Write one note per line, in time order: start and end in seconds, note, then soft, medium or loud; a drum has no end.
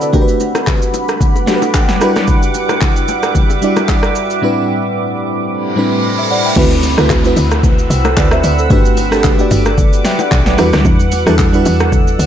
0.00 0.15 D3 medium
0.00 0.13 A3 medium
0.00 0.16 C4 medium
0.00 0.12 D4 medium
0.00 0.15 E4 medium
0.00 0.14 F#4 medium
0.00 0.16 A4 medium
0.00 0.02 B4 medium
0.00 0.21 B4 medium
0.00 0.02 D5 medium
0.00 0.27 D5 medium
0.00 0.12 F#5 medium
0.00 0.15 F#5 medium
0.00 0.16 A5 medium
0.00 0.12 E6 medium
0.00 shaker soft
0.13 6.52 G3 medium
0.13 0.99 A3 medium
0.13 1.00 D4 medium
0.13 1.00 F#4 medium
0.13 1.00 G4 medium
0.13 0.22 A#4 medium
0.13 4.38 F#5 medium
0.13 1.99 B5 medium
0.13 6.53 D6 medium
0.13 kick loud
0.13 low conga medium
0.13 shaker medium
0.22 1.04 B4 loud
0.28 shaker medium
0.40 low bongo medium
0.40 shaker medium
0.55 cross-stick loud
0.55 low bongo medium
0.55 shaker medium
0.67 kick medium
0.67 clap medium
0.67 high bongo medium
0.67 low conga medium
0.67 shaker medium
0.82 shaker soft
0.94 low bongo medium
0.94 shaker medium
1.09 cross-stick medium
1.09 shaker medium
1.21 kick loud
1.21 low conga medium
1.21 shaker medium
1.36 high bongo medium
1.36 shaker medium
1.46 2.01 A3 medium
1.46 2.00 D4 medium
1.46 2.01 F#4 medium
1.46 2.02 G4 medium
1.46 1.56 A4 medium
1.46 1.73 F#5 medium
1.46 snare medium
1.46 shaker medium
1.56 2.02 B4 medium
1.62 low bongo medium
1.62 shaker medium
1.74 1.99 G5 medium
1.74 kick loud
1.74 clap medium
1.74 high bongo medium
1.74 shaker medium
1.89 snare medium
1.89 shaker medium
2.00 2.87 G3 medium
2.00 2.87 D4 medium
2.00 2.88 E4 medium
2.00 2.88 F#4 medium
2.00 2.88 B4 loud
2.00 4.40 E5 medium
2.00 2.26 B5 medium
2.00 cross-stick loud
2.00 shaker medium
2.16 cross-stick medium
2.16 snare medium
2.16 shaker soft
2.28 kick loud
2.28 low conga medium
2.28 shaker medium
2.42 shaker medium
2.54 low bongo soft
2.54 shaker loud
2.69 cross-stick medium
2.69 low bongo medium
2.69 shaker medium
2.81 kick loud
2.81 clap medium
2.81 high bongo medium
2.81 low conga medium
2.81 shaker medium
2.96 shaker soft
3.08 low bongo medium
3.08 shaker medium
3.23 cross-stick medium
3.23 shaker medium
3.35 kick loud
3.35 low conga medium
3.35 shaker medium
3.50 high bongo soft
3.50 shaker medium
3.61 4.27 G3 medium
3.61 4.27 D4 medium
3.61 4.28 E4 medium
3.61 4.28 F#4 medium
3.61 4.28 D5 medium
3.61 shaker medium
3.77 cross-stick medium
3.77 low bongo medium
3.77 shaker medium
3.88 kick loud
3.88 clap medium
3.88 high bongo medium
3.88 shaker medium
4.03 cross-stick loud
4.03 shaker medium
4.15 shaker loud
4.30 shaker soft
4.42 5.28 A2 medium
4.42 5.28 G3 medium
4.42 6.55 A3 medium
4.42 6.54 C4 medium
4.42 5.29 C4 medium
4.42 5.29 D4 medium
4.42 5.29 E4 medium
4.42 5.30 B4 loud
4.42 6.55 B5 medium
5.49 reverse cymbal medium
5.76 6.41 A2 medium
5.76 6.42 G3 medium
5.76 6.42 C4 medium
5.76 6.42 D4 medium
5.76 6.42 E4 medium
5.76 6.04 B4 medium
6.19 6.30 C5 medium
6.19 6.30 E5 medium
6.31 6.45 D5 medium
6.31 6.44 F#5 medium
6.46 6.71 E5 medium
6.46 6.71 G5 medium
6.56 6.96 D2 loud
6.56 6.89 A3 medium
6.56 6.89 C4 medium
6.56 8.69 C4 medium
6.56 6.89 E4 medium
6.56 6.90 F#4 medium
6.56 6.90 B4 loud
6.56 8.69 F#5 medium
6.56 8.69 B5 medium
6.56 8.69 E6 loud
6.56 kick loud
6.56 crash loud
6.56 downlifter medium
6.56 low conga medium
6.56 shaker medium
6.71 shaker medium
6.83 open hi-hat medium
6.83 low bongo medium
6.83 shaker loud
6.97 7.35 D2 loud
6.97 7.19 A3 medium
6.97 7.19 C4 medium
6.97 7.19 E4 medium
6.97 7.20 F#4 medium
6.97 7.20 B4 loud
6.97 cross-stick loud
6.97 shaker medium
7.10 kick loud
7.10 clap medium
7.10 high bongo medium
7.10 low conga medium
7.10 shaker medium
7.24 8.10 A3 medium
7.24 8.10 C4 medium
7.24 8.10 E4 medium
7.24 8.11 F#4 medium
7.24 7.91 B4 loud
7.24 shaker medium
7.37 7.88 D2 loud
7.37 open hi-hat medium
7.37 low bongo medium
7.37 shaker medium
7.51 cross-stick medium
7.51 high bongo medium
7.51 shaker medium
7.63 kick loud
7.63 low conga medium
7.63 shaker medium
7.79 shaker medium
7.90 8.16 C2 loud
7.90 open hi-hat medium
7.90 shaker loud
8.05 8.17 A4 medium
8.05 8.17 C5 medium
8.05 cross-stick medium
8.05 low bongo medium
8.05 shaker medium
8.17 8.43 D2 loud
8.17 8.32 B4 medium
8.17 8.32 D5 medium
8.17 kick medium
8.17 clap loud
8.17 high bongo medium
8.17 shaker medium
8.31 8.44 C5 medium
8.31 8.44 E5 medium
8.31 cross-stick loud
8.31 shaker medium
8.44 8.70 D2 loud
8.44 8.59 B4 medium
8.44 8.58 D5 medium
8.44 open hi-hat medium
8.44 shaker medium
8.59 8.85 A4 medium
8.59 8.84 C5 medium
8.59 shaker soft
8.70 9.47 G1 loud
8.70 9.03 A3 medium
8.70 9.03 D4 medium
8.70 9.04 F#4 medium
8.70 9.04 G4 medium
8.70 10.56 B4 medium
8.70 9.04 B4 loud
8.70 12.26 F#5 medium
8.70 10.56 D6 loud
8.70 kick loud
8.70 low conga medium
8.70 shaker medium
8.85 shaker medium
8.97 open hi-hat medium
8.97 low bongo medium
8.97 shaker loud
9.11 9.33 A3 medium
9.11 9.33 D4 medium
9.11 9.33 F#4 medium
9.11 9.34 G4 medium
9.11 9.34 A4 loud
9.11 cross-stick loud
9.11 shaker medium
9.24 kick loud
9.24 clap medium
9.24 high bongo medium
9.24 low conga medium
9.24 shaker medium
9.38 10.24 A3 medium
9.38 10.24 D4 medium
9.38 10.24 F#4 medium
9.38 10.25 G4 medium
9.38 10.06 D5 loud
9.38 shaker medium
9.51 10.02 G1 loud
9.51 open hi-hat medium
9.51 low bongo medium
9.51 shaker loud
9.66 cross-stick medium
9.66 high bongo medium
9.66 shaker medium
9.77 kick loud
9.77 low conga medium
9.77 shaker medium
9.93 shaker medium
10.05 10.19 E5 medium
10.05 10.19 G5 medium
10.05 snare medium
10.05 open hi-hat medium
10.05 shaker loud
10.19 10.46 D5 medium
10.19 10.45 F#5 medium
10.19 low bongo medium
10.19 shaker medium
10.31 10.57 B1 loud
10.31 kick loud
10.31 clap loud
10.31 high bongo medium
10.31 shaker medium
10.46 10.59 B4 medium
10.46 10.72 D5 medium
10.46 snare medium
10.46 shaker medium
10.57 10.72 E2 loud
10.57 11.11 G3 medium
10.57 11.12 D4 medium
10.57 11.12 E4 medium
10.57 11.12 F#4 medium
10.57 11.13 B4 loud
10.57 12.26 D5 medium
10.57 12.26 E6 medium
10.57 cross-stick loud
10.57 open hi-hat medium
10.57 shaker medium
10.73 10.85 D2 loud
10.73 cross-stick loud
10.73 snare medium
10.73 shaker soft
10.85 11.25 E2 loud
10.85 kick loud
10.85 low conga medium
10.85 shaker medium
11.00 shaker medium
11.12 open hi-hat medium
11.12 low bongo medium
11.12 shaker loud
11.26 11.64 E2 loud
11.26 11.47 G3 medium
11.26 11.47 D4 medium
11.26 11.48 E4 medium
11.26 11.48 F#4 medium
11.26 11.49 A4 loud
11.26 cross-stick loud
11.26 shaker medium
11.39 kick loud
11.39 clap medium
11.39 high bongo medium
11.39 low conga medium
11.39 shaker medium
11.52 12.26 G3 medium
11.52 12.26 D4 medium
11.52 12.26 E4 medium
11.52 12.26 F#4 medium
11.52 12.26 B4 medium
11.52 shaker medium
11.66 12.17 E2 loud
11.66 open hi-hat medium
11.66 low bongo medium
11.66 shaker loud
11.80 cross-stick loud
11.80 high bongo medium
11.80 shaker medium
11.92 kick loud
11.92 low conga medium
11.92 shaker medium
12.07 shaker medium
12.19 12.26 D2 loud
12.19 open hi-hat medium
12.19 shaker loud